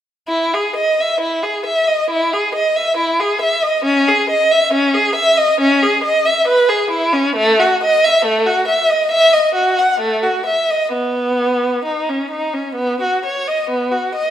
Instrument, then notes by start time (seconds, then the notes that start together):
violin
0.28 E4
0.54 G#4
0.76 D#5
1.00 E5
1.21 E4
1.43 G#4
1.66 E5
1.87 D#5
2.10 E4
2.33 G#4
2.55 D#5
2.76 E5
2.97 E4
3.20 G#4
3.42 E5
3.62 D#5
3.85 C#4
4.08 G#4
4.30 D#5
4.51 E5
4.73 C#4
4.94 G#4
5.15 E5
5.37 D#5
5.60 C#4
5.83 G#4
6.04 D#5
6.25 E5
6.48 B4
6.69 G#4
6.91 E4
7.13 C#4
7.36 A3
7.60 F#4
7.83 D#5
8.04 E5
8.25 A3
8.46 F#4
8.68 E5
8.90 D#5
9.12 E5
9.33 D#5
9.55 F#4
9.78 F#5
10.00 A3
10.23 F#4
10.46 E5
10.70 D#5
10.92 B3
11.85 D#4
12.09 C#4
12.31 D#4
12.53 C#4
12.75 B3
13.02 F#4
13.25 C#5
13.48 D#5
13.70 B3
13.92 F#4
14.15 D#5